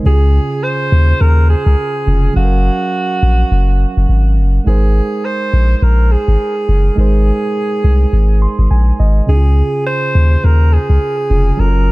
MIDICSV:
0, 0, Header, 1, 4, 480
1, 0, Start_track
1, 0, Tempo, 576923
1, 44, Time_signature, 4, 2, 24, 8
1, 9917, End_track
2, 0, Start_track
2, 0, Title_t, "Alto saxophone"
2, 0, Program_c, 0, 65
2, 51, Note_on_c, 0, 68, 105
2, 528, Note_on_c, 0, 72, 118
2, 540, Note_off_c, 0, 68, 0
2, 1007, Note_on_c, 0, 70, 108
2, 1019, Note_off_c, 0, 72, 0
2, 1241, Note_off_c, 0, 70, 0
2, 1246, Note_on_c, 0, 68, 113
2, 1931, Note_off_c, 0, 68, 0
2, 1966, Note_on_c, 0, 66, 98
2, 3612, Note_off_c, 0, 66, 0
2, 3887, Note_on_c, 0, 68, 96
2, 4368, Note_on_c, 0, 72, 115
2, 4380, Note_off_c, 0, 68, 0
2, 4802, Note_off_c, 0, 72, 0
2, 4802, Note_on_c, 0, 72, 75
2, 4850, Note_on_c, 0, 70, 103
2, 4862, Note_off_c, 0, 72, 0
2, 5089, Note_on_c, 0, 68, 105
2, 5102, Note_off_c, 0, 70, 0
2, 5807, Note_off_c, 0, 68, 0
2, 5813, Note_on_c, 0, 68, 98
2, 7455, Note_off_c, 0, 68, 0
2, 7727, Note_on_c, 0, 68, 98
2, 8172, Note_off_c, 0, 68, 0
2, 8206, Note_on_c, 0, 72, 116
2, 8691, Note_on_c, 0, 70, 109
2, 8703, Note_off_c, 0, 72, 0
2, 8929, Note_on_c, 0, 68, 103
2, 8942, Note_off_c, 0, 70, 0
2, 9650, Note_on_c, 0, 70, 109
2, 9662, Note_off_c, 0, 68, 0
2, 9917, Note_off_c, 0, 70, 0
2, 9917, End_track
3, 0, Start_track
3, 0, Title_t, "Tine electric piano"
3, 0, Program_c, 1, 4
3, 0, Control_c, 1, 64, 127
3, 21, Note_on_c, 1, 49, 67
3, 35, Note_on_c, 1, 61, 64
3, 49, Note_on_c, 1, 65, 61
3, 56, Control_c, 1, 64, 0
3, 62, Note_on_c, 1, 67, 59
3, 116, Note_off_c, 1, 67, 0
3, 117, Note_on_c, 1, 68, 74
3, 190, Control_c, 1, 64, 127
3, 1679, Note_off_c, 1, 49, 0
3, 1686, Note_off_c, 1, 61, 0
3, 1693, Note_off_c, 1, 65, 0
3, 1715, Note_on_c, 1, 49, 53
3, 1722, Note_on_c, 1, 61, 45
3, 1726, Note_off_c, 1, 68, 0
3, 1729, Note_on_c, 1, 65, 47
3, 1736, Note_on_c, 1, 68, 56
3, 1941, Note_on_c, 1, 54, 66
3, 1945, Note_off_c, 1, 61, 0
3, 1955, Note_on_c, 1, 61, 62
3, 1959, Note_off_c, 1, 49, 0
3, 1966, Note_off_c, 1, 65, 0
3, 1968, Note_on_c, 1, 77, 62
3, 1970, Note_off_c, 1, 68, 0
3, 1976, Control_c, 1, 64, 0
3, 1982, Note_on_c, 1, 69, 59
3, 2036, Note_off_c, 1, 69, 0
3, 2037, Note_on_c, 1, 70, 74
3, 2128, Control_c, 1, 64, 127
3, 3839, Note_off_c, 1, 54, 0
3, 3846, Note_off_c, 1, 61, 0
3, 3853, Note_off_c, 1, 77, 0
3, 3862, Note_on_c, 1, 56, 63
3, 3876, Note_on_c, 1, 63, 58
3, 3880, Note_off_c, 1, 70, 0
3, 3890, Note_on_c, 1, 70, 61
3, 3896, Control_c, 1, 64, 0
3, 3903, Note_on_c, 1, 72, 71
3, 4062, Control_c, 1, 64, 127
3, 5760, Note_off_c, 1, 56, 0
3, 5767, Note_off_c, 1, 63, 0
3, 5774, Note_off_c, 1, 70, 0
3, 5780, Note_off_c, 1, 72, 0
3, 5784, Note_on_c, 1, 56, 69
3, 5797, Note_on_c, 1, 63, 60
3, 5811, Note_on_c, 1, 70, 59
3, 5826, Note_on_c, 1, 72, 72
3, 7005, Note_on_c, 1, 84, 74
3, 7228, Note_off_c, 1, 84, 0
3, 7244, Note_on_c, 1, 80, 79
3, 7467, Note_off_c, 1, 80, 0
3, 7484, Note_on_c, 1, 75, 72
3, 7681, Note_off_c, 1, 56, 0
3, 7687, Note_off_c, 1, 63, 0
3, 7694, Note_off_c, 1, 70, 0
3, 7702, Note_off_c, 1, 72, 0
3, 7704, Note_on_c, 1, 49, 68
3, 7707, Note_off_c, 1, 75, 0
3, 7717, Note_on_c, 1, 61, 61
3, 7732, Note_on_c, 1, 63, 50
3, 7734, Control_c, 1, 64, 0
3, 7745, Note_on_c, 1, 68, 76
3, 7785, Note_on_c, 1, 65, 60
3, 7791, Note_off_c, 1, 63, 0
3, 7866, Control_c, 1, 64, 127
3, 9361, Note_off_c, 1, 49, 0
3, 9367, Note_off_c, 1, 61, 0
3, 9381, Note_off_c, 1, 68, 0
3, 9394, Note_on_c, 1, 49, 48
3, 9398, Note_off_c, 1, 65, 0
3, 9400, Note_on_c, 1, 61, 48
3, 9408, Note_on_c, 1, 65, 47
3, 9414, Note_on_c, 1, 68, 59
3, 9624, Note_on_c, 1, 54, 68
3, 9627, Note_off_c, 1, 61, 0
3, 9637, Note_on_c, 1, 61, 59
3, 9639, Note_off_c, 1, 49, 0
3, 9641, Note_off_c, 1, 65, 0
3, 9649, Note_off_c, 1, 68, 0
3, 9651, Note_on_c, 1, 65, 61
3, 9653, Control_c, 1, 64, 0
3, 9665, Note_on_c, 1, 69, 62
3, 9717, Note_off_c, 1, 69, 0
3, 9720, Note_on_c, 1, 70, 73
3, 9802, Control_c, 1, 64, 127
3, 9917, Note_off_c, 1, 54, 0
3, 9917, Note_off_c, 1, 61, 0
3, 9917, Note_off_c, 1, 65, 0
3, 9917, Note_off_c, 1, 70, 0
3, 9917, End_track
4, 0, Start_track
4, 0, Title_t, "Sub bass"
4, 0, Program_c, 2, 38
4, 45, Note_on_c, 2, 37, 110
4, 327, Note_off_c, 2, 37, 0
4, 765, Note_on_c, 2, 39, 99
4, 943, Note_off_c, 2, 39, 0
4, 1003, Note_on_c, 2, 39, 97
4, 1286, Note_off_c, 2, 39, 0
4, 1382, Note_on_c, 2, 37, 98
4, 1457, Note_off_c, 2, 37, 0
4, 1724, Note_on_c, 2, 29, 87
4, 1903, Note_off_c, 2, 29, 0
4, 1964, Note_on_c, 2, 30, 112
4, 2246, Note_off_c, 2, 30, 0
4, 2682, Note_on_c, 2, 34, 96
4, 2861, Note_off_c, 2, 34, 0
4, 2922, Note_on_c, 2, 30, 107
4, 3205, Note_off_c, 2, 30, 0
4, 3303, Note_on_c, 2, 30, 94
4, 3378, Note_off_c, 2, 30, 0
4, 3402, Note_on_c, 2, 32, 98
4, 3642, Note_on_c, 2, 30, 86
4, 3655, Note_off_c, 2, 32, 0
4, 3822, Note_off_c, 2, 30, 0
4, 3882, Note_on_c, 2, 32, 109
4, 4165, Note_off_c, 2, 32, 0
4, 4602, Note_on_c, 2, 34, 93
4, 4781, Note_off_c, 2, 34, 0
4, 4842, Note_on_c, 2, 34, 114
4, 5125, Note_off_c, 2, 34, 0
4, 5223, Note_on_c, 2, 32, 98
4, 5298, Note_off_c, 2, 32, 0
4, 5562, Note_on_c, 2, 30, 92
4, 5742, Note_off_c, 2, 30, 0
4, 5803, Note_on_c, 2, 32, 111
4, 6085, Note_off_c, 2, 32, 0
4, 6523, Note_on_c, 2, 36, 100
4, 6702, Note_off_c, 2, 36, 0
4, 6762, Note_on_c, 2, 32, 99
4, 7045, Note_off_c, 2, 32, 0
4, 7143, Note_on_c, 2, 32, 90
4, 7218, Note_off_c, 2, 32, 0
4, 7243, Note_on_c, 2, 34, 93
4, 7422, Note_off_c, 2, 34, 0
4, 7484, Note_on_c, 2, 32, 86
4, 7663, Note_off_c, 2, 32, 0
4, 7724, Note_on_c, 2, 37, 112
4, 8006, Note_off_c, 2, 37, 0
4, 8443, Note_on_c, 2, 39, 99
4, 8622, Note_off_c, 2, 39, 0
4, 8685, Note_on_c, 2, 39, 101
4, 8967, Note_off_c, 2, 39, 0
4, 9062, Note_on_c, 2, 37, 94
4, 9138, Note_off_c, 2, 37, 0
4, 9404, Note_on_c, 2, 29, 87
4, 9583, Note_off_c, 2, 29, 0
4, 9644, Note_on_c, 2, 30, 116
4, 9917, Note_off_c, 2, 30, 0
4, 9917, End_track
0, 0, End_of_file